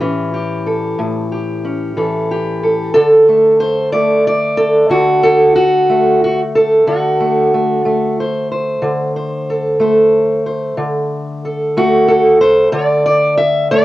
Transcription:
Already playing: A2 G4
0.01 E3 C#4
0.34 G4
0.66 A4
0.99 A2
1.32 G4
1.65 C#4
1.97 E3 A4
2.31 G4
2.63 A4
2.94 D3 A4
3.29 A3
3.60 C5
3.92 A3 D5
4.27 D5
4.57 A4
4.90 D3 F#4
5.23 A4
5.56 F#4
5.90 A3
6.24 F#4
6.55 A4
6.87 D3 F#4
7.20 A3
7.54 A3
7.85 A3
8.20 C5
8.52 C5
8.82 D3
9.16 C5
9.50 A4
9.80 A3 C5
10.46 C5
10.78 D3
11.45 A4
11.77 A3 F#4
12.08 A4
12.41 C5
12.72 D3 D5
13.06 D5
13.37 E5
13.71 A3 D5

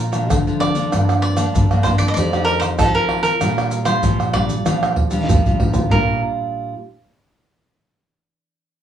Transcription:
Already playing: A#2 A#4
0.12 F3 A3 D4, pandeiro, tamborim, maracas
0.30 F2 D3, pandeiro, tamborim, maracas, surdo
0.47 F3 A3 D4, pandeiro, maracas
0.60 D5, pandeiro, tamborim
0.75 F3 A#3 D4, pandeiro, maracas
0.92 G2, pandeiro, tamborim, maracas, surdo
1.09 pandeiro, tamborim, maracas
1.22 D5, pandeiro
1.37 F3 A#3 D4, pandeiro, tamborim, maracas
1.54 G2 D3, pandeiro, maracas, surdo
1.71 F3 A#3 D4, pandeiro, tamborim, maracas
1.83 F3 A#3 D4 C5, pandeiro, tamborim, maracas, surdo
1.98 D5, pandeiro, maracas
2.08 D#5
2.14 F2 F3 D5, pandeiro, maracas, surdo
2.18 A3 D#4 G4
2.33 A3 D#4 G4, pandeiro, tamborim, maracas
2.45 A#4, pandeiro
2.60 C5, pandeiro, tamborim, maracas
2.79 C3 F3 A3 D#4 G4 A4, pandeiro, tamborim, maracas, surdo
2.95 A#4, pandeiro, maracas
3.09 pandeiro, tamborim
3.23 A#4, pandeiro, maracas
3.41 A#2 G3 D4 F4, pandeiro, tamborim, maracas, surdo
3.58 pandeiro, tamborim, maracas
3.71 pandeiro, maracas
3.85 G3 D4 F4 C5, pandeiro, tamborim, maracas
4.03 A#2 F3, pandeiro, maracas, surdo
4.20 pandeiro, tamborim, maracas
4.33 G3 D4 F4 D5, pandeiro, tamborim, surdo
4.49 pandeiro, maracas
4.65 A#2 F3 G3 D4 F4, pandeiro, tamborim, maracas, surdo
4.83 pandeiro, tamborim, maracas
4.96 surdo, pandeiro
5.11 G3 D4 F4, pandeiro, maracas
5.28 A#2 F3, surdo, pandeiro, maracas
5.46 G3 D4 F4, pandeiro, maracas, surdo
5.60 pandeiro, surdo
5.74 pandeiro, maracas, surdo
5.90 A#2 G3 D4 F4 A#4, surdo

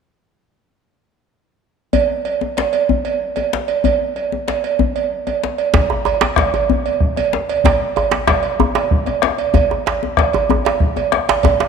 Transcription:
1.93 cowbell, djembe bass
2.25 cowbell, djembe slap
2.41 djembe tone
2.57 cowbell, djembe slap
2.73 cowbell, djembe slap
2.89 djembe bass
3.05 cowbell
3.36 cowbell, djembe tone
3.53 djembe slap
3.68 cowbell, djembe slap
3.84 cowbell, djembe bass
4.16 cowbell, djembe slap
4.32 djembe tone
4.48 cowbell, djembe slap
4.64 cowbell, djembe slap
4.79 djembe bass
4.96 cowbell
5.27 cowbell, djembe tone
5.43 djembe slap
5.58 cowbell, djembe slap
5.74 bombo low, cowbell, djembe slap, djembe bass
5.90 bombo rim, djembe tone
6.05 cowbell, djembe tone
6.21 djembe slap, djembe tone
6.36 bombo rim, bombo low, cowbell, djembe slap, djembe tone
6.54 cowbell, djembe tone
6.70 djembe bass
6.86 cowbell
7.00 bombo rim, bombo low
7.16 bombo rim, cowbell, djembe tone
7.33 djembe slap
7.49 cowbell, djembe slap
7.64 bombo low, cowbell, djembe slap, djembe bass
7.80 bombo rim
7.96 cowbell, djembe tone
8.11 djembe slap, djembe tone
8.27 bombo rim, bombo low, cowbell, djembe slap
8.43 cowbell
8.60 djembe tone, djembe bass
8.75 cowbell, djembe slap
8.91 bombo rim, bombo low
9.06 bombo rim, cowbell, djembe tone
9.22 bombo rim, djembe slap
9.38 cowbell, djembe slap
9.54 bombo low, cowbell, djembe slap, djembe tone, djembe bass
9.70 bombo rim, djembe tone
9.86 cowbell, djembe slap
10.03 djembe tone
10.17 bombo rim, bombo low, cowbell, djembe slap
10.33 cowbell, djembe tone
10.50 djembe tone, djembe bass
10.65 cowbell, djembe slap
10.80 bombo rim, bombo low
10.96 bombo rim, cowbell, djembe tone
11.12 bombo rim, djembe slap
11.29 cowbell, djembe slap
11.43 bombo low, cowbell, djembe slap, djembe bass
11.60 bombo rim, djembe slap

